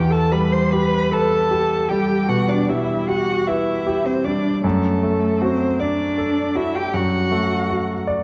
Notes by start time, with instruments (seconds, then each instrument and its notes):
Already playing: grand piano E2, cello G4, violin G5
0.10 cello A4, violin A5
0.31 grand piano G3, cello B4, violin B5
0.52 cello C5, violin C6
0.71 grand piano G4, cello B4, violin B5
1.11 cello A4, grand piano B4, violin A5
1.51 grand piano G4
1.89 grand piano G3, cello G4, violin G5
2.28 grand piano B2, cello F#4, violin F#5
2.48 cello D4, violin D5
2.69 grand piano G3, cello E4, violin E5
3.08 cello F#4, grand piano G4, violin F#5
3.47 cello E4, grand piano B4, violin E5
3.87 grand piano G4
4.05 cello C4, violin C5
4.24 grand piano G3, cello D4, violin D5
4.63 grand piano F#2, cello A3, violin A4
5.03 grand piano A3
5.41 cello C4, grand piano F#4, violin C5
5.79 cello D4, violin D5, grand piano D5
6.18 grand piano A4
6.55 cello E4, grand piano F#4, violin E5
6.74 cello G4, violin G5
6.93 grand piano F#2, cello F#4, violin F#5
7.31 grand piano A3
7.69 grand piano F#4
8.07 grand piano D5